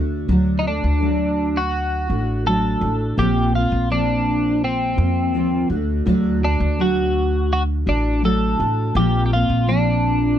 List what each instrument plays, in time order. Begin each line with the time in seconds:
Already playing: upright bass D2, steel-string acoustic guitar A3 D4 F#4
0.28 upright bass D2, steel-string acoustic guitar D3 F#3 A3 D4 F#4
0.59 clean electric guitar D#4
0.64 steel-string acoustic guitar A3 D4 F#4, clean electric guitar D4
0.84 upright bass D2
1.00 steel-string acoustic guitar F#3 A3 D4 F#4
1.57 clean electric guitar F#4
2.08 upright bass A1, steel-string acoustic guitar A3 D4 F#4
2.45 steel-string acoustic guitar F#3 A3 D4 F#4, clean electric guitar A4
2.81 upright bass A1, steel-string acoustic guitar A3 D4 F#4
3.17 upright bass A#1, steel-string acoustic guitar A#2 F3 A#3 C4 F4, clean electric guitar G4
3.53 steel-string acoustic guitar A#3 C4 F4, clean electric guitar F4
3.72 upright bass A#1
3.89 steel-string acoustic guitar F3 A#3 C4 F4, clean electric guitar D4
4.64 clean electric guitar C4
4.97 upright bass F2, steel-string acoustic guitar A#3 C4 F4
5.33 upright bass D#2, steel-string acoustic guitar F3 A#3 C4 F4
5.70 upright bass D2, steel-string acoustic guitar A3 D4 F#4
6.06 upright bass D2, steel-string acoustic guitar D3 F#3 A3 D4 F#4
6.41 steel-string acoustic guitar A3 D4 F#4, clean electric guitar D4
6.60 upright bass D2
6.78 steel-string acoustic guitar F#3 A3 D4 F#4, clean electric guitar F#4
7.53 clean electric guitar F#4
7.86 upright bass A1, steel-string acoustic guitar A3 D4 F#4, clean electric guitar D4
8.22 steel-string acoustic guitar F#3 A3 D4 F#4, clean electric guitar A4
8.58 upright bass A1, steel-string acoustic guitar A3 D4 F#4
8.95 upright bass A#1, steel-string acoustic guitar A#2 F3 A#3 C4 F4, clean electric guitar G4
9.26 clean electric guitar G4
9.31 steel-string acoustic guitar A#3 C4 F4, clean electric guitar F4
9.49 upright bass A#1
9.67 steel-string acoustic guitar F3 A#3 C4 F4, clean electric guitar D4